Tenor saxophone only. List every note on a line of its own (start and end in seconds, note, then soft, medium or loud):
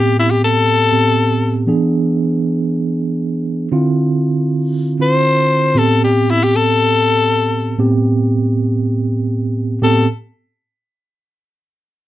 0.00 0.16 G4 medium
0.19 0.32 E4 medium
0.31 0.41 G4 medium
0.44 1.66 A4 medium
5.02 5.79 C5 loud
5.78 6.01 A4 medium
6.04 6.32 G4 medium
6.30 6.45 E4 medium
6.44 6.57 G4 medium
6.56 8.02 A4 loud
9.84 10.07 A4 medium